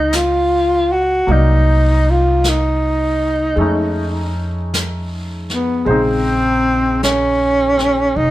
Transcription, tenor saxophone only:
0, 0, Header, 1, 2, 480
1, 0, Start_track
1, 0, Key_signature, -5, "minor"
1, 0, Tempo, 1149425
1, 535, Time_signature, 4, 2, 24, 8
1, 3469, End_track
2, 0, Start_track
2, 0, Title_t, "Tenor saxophone"
2, 0, Program_c, 0, 66
2, 0, Note_on_c, 0, 63, 67
2, 63, Note_on_c, 0, 65, 77
2, 69, Note_off_c, 0, 63, 0
2, 386, Note_on_c, 0, 66, 73
2, 392, Note_off_c, 0, 65, 0
2, 552, Note_on_c, 0, 63, 76
2, 558, Note_off_c, 0, 66, 0
2, 877, Note_on_c, 0, 65, 74
2, 884, Note_off_c, 0, 63, 0
2, 1038, Note_on_c, 0, 63, 66
2, 1045, Note_off_c, 0, 65, 0
2, 1823, Note_off_c, 0, 63, 0
2, 2312, Note_on_c, 0, 59, 58
2, 2456, Note_off_c, 0, 59, 0
2, 2456, Note_on_c, 0, 59, 44
2, 2466, Note_on_c, 0, 60, 79
2, 2472, Note_off_c, 0, 59, 0
2, 2937, Note_off_c, 0, 60, 0
2, 2939, Note_on_c, 0, 61, 71
2, 3411, Note_on_c, 0, 63, 77
2, 3417, Note_off_c, 0, 61, 0
2, 3469, Note_off_c, 0, 63, 0
2, 3469, End_track
0, 0, End_of_file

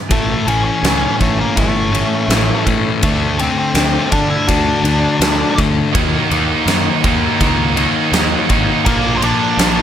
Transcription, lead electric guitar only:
0, 0, Header, 1, 2, 480
1, 0, Start_track
1, 0, Tempo, 729927
1, 70, Time_signature, 4, 2, 24, 8
1, 6458, End_track
2, 0, Start_track
2, 0, Title_t, "Lead electric guitar"
2, 0, Program_c, 0, 29
2, 73, Note_on_c, 0, 57, 69
2, 77, Note_on_c, 0, 69, 77
2, 295, Note_off_c, 0, 57, 0
2, 319, Note_off_c, 0, 69, 0
2, 319, Note_on_c, 0, 61, 69
2, 319, Note_on_c, 0, 73, 79
2, 418, Note_off_c, 0, 61, 0
2, 419, Note_off_c, 0, 73, 0
2, 425, Note_on_c, 0, 61, 72
2, 429, Note_on_c, 0, 73, 89
2, 763, Note_off_c, 0, 61, 0
2, 764, Note_off_c, 0, 73, 0
2, 796, Note_on_c, 0, 57, 63
2, 801, Note_on_c, 0, 69, 76
2, 905, Note_off_c, 0, 57, 0
2, 919, Note_off_c, 0, 69, 0
2, 921, Note_on_c, 0, 58, 55
2, 924, Note_on_c, 0, 70, 76
2, 1028, Note_off_c, 0, 58, 0
2, 1030, Note_off_c, 0, 70, 0
2, 1043, Note_on_c, 0, 57, 60
2, 1049, Note_on_c, 0, 69, 78
2, 1730, Note_off_c, 0, 57, 0
2, 1734, Note_off_c, 0, 69, 0
2, 1997, Note_on_c, 0, 57, 58
2, 1999, Note_on_c, 0, 69, 71
2, 2217, Note_off_c, 0, 57, 0
2, 2233, Note_on_c, 0, 60, 60
2, 2234, Note_on_c, 0, 72, 69
2, 2241, Note_off_c, 0, 69, 0
2, 2344, Note_off_c, 0, 60, 0
2, 2347, Note_off_c, 0, 72, 0
2, 2355, Note_on_c, 0, 72, 86
2, 2360, Note_on_c, 0, 60, 68
2, 2688, Note_off_c, 0, 72, 0
2, 2690, Note_off_c, 0, 60, 0
2, 2706, Note_on_c, 0, 62, 63
2, 2713, Note_on_c, 0, 74, 78
2, 2820, Note_off_c, 0, 62, 0
2, 2822, Note_off_c, 0, 74, 0
2, 2829, Note_on_c, 0, 76, 92
2, 2831, Note_on_c, 0, 64, 57
2, 2941, Note_off_c, 0, 64, 0
2, 2944, Note_on_c, 0, 62, 79
2, 2947, Note_off_c, 0, 76, 0
2, 2947, Note_on_c, 0, 74, 82
2, 3641, Note_off_c, 0, 62, 0
2, 3667, Note_off_c, 0, 74, 0
2, 5822, Note_on_c, 0, 70, 93
2, 5831, Note_on_c, 0, 58, 70
2, 6009, Note_off_c, 0, 58, 0
2, 6023, Note_off_c, 0, 70, 0
2, 6031, Note_on_c, 0, 72, 81
2, 6071, Note_off_c, 0, 72, 0
2, 6074, Note_on_c, 0, 74, 100
2, 6081, Note_on_c, 0, 62, 77
2, 6458, Note_off_c, 0, 62, 0
2, 6458, Note_off_c, 0, 74, 0
2, 6458, End_track
0, 0, End_of_file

